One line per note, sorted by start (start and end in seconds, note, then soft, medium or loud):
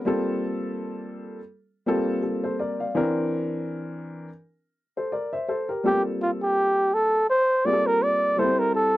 0.05 1.38 G3 medium
0.05 1.38 A#3 medium
0.05 1.38 C4 medium
0.05 1.39 F4 medium
0.05 1.39 A4 medium
1.86 2.86 G3 medium
1.86 2.86 A#3 medium
1.86 2.86 C4 medium
1.86 2.22 F4 medium
1.86 2.22 A4 medium
2.23 2.43 F4 soft
2.23 2.43 A4 soft
2.44 2.59 A4 medium
2.44 2.58 C5 medium
2.59 2.79 A#4 medium
2.59 2.79 D5 medium
2.80 3.15 D5 soft
2.80 3.14 F5 medium
2.95 4.27 E3 medium
2.95 4.28 C4 medium
2.95 4.28 D4 medium
2.95 4.28 A#4 medium
4.97 5.12 A4 soft
4.97 5.12 C5 medium
5.12 5.32 A#4 soft
5.12 5.32 D5 medium
5.33 5.47 C5 soft
5.33 5.48 E5 medium
5.49 5.68 A4 medium
5.49 5.68 C5 medium
5.69 6.04 G4 soft
5.69 6.03 A#4 medium
5.84 7.16 G3 medium
5.84 5.92 A3 soft
5.84 7.17 C4 medium
5.84 7.17 F4 medium
5.84 6.02 G4 medium
5.84 7.17 A4 medium
5.90 7.20 A#3 medium
6.22 6.31 F4 medium
6.43 6.95 G4 medium
6.94 7.29 A4 medium
7.30 7.67 C5 medium
7.65 8.35 G3 medium
7.65 8.36 A#3 medium
7.65 8.38 C4 medium
7.65 8.38 F4 medium
7.65 7.73 G#4 medium
7.65 7.88 D5 loud
7.73 8.37 A4 medium
7.87 8.04 A#4 medium
8.03 8.40 D5 loud
8.37 8.97 G3 medium
8.37 8.45 A#3 medium
8.37 8.97 E4 medium
8.37 8.97 A4 medium
8.37 8.61 C5 medium
8.44 8.97 C4 medium
8.59 8.74 A#4 medium
8.75 8.97 A4 medium